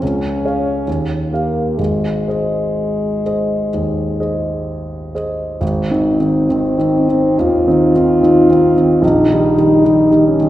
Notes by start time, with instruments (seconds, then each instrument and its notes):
0.01 grand piano C#2, french horn C#4
0.45 grand piano G#4 C#5 F5
0.88 grand piano D#2
1.30 french horn A#3, grand piano G4 A#4 F5
1.78 grand piano G#1, french horn G#3
2.28 grand piano G#4 C5 D#5
3.26 grand piano G#4 C5 D#5
3.74 grand piano D#2
4.20 grand piano G#4 C5 D#5
5.15 grand piano G#4 C5 D#5
5.61 grand piano G#1
5.90 grand piano D#3 C4 D#4
6.19 grand piano D#3 C4 D#4
6.49 grand piano D#3 C4 D#4, french horn C4
6.78 grand piano D#3 C4 D#4
7.08 grand piano D#3 C4 D#4
7.38 grand piano D#2, french horn F4
7.67 grand piano D#3 C4 D#4
7.95 grand piano D#3 C4 D#4
8.22 grand piano D#3 C4 D#4
8.49 grand piano D#3 C4 D#4
8.76 grand piano D#3 C4 D#4
9.02 grand piano A#1, french horn D#4
9.30 grand piano D#3 G3 D#4
9.57 grand piano D#3 G3 D#4
9.84 grand piano D#3 G3 D#4
10.11 grand piano D#3 G3 D#4
10.27 french horn C#4
10.40 grand piano D#3 G3 D#4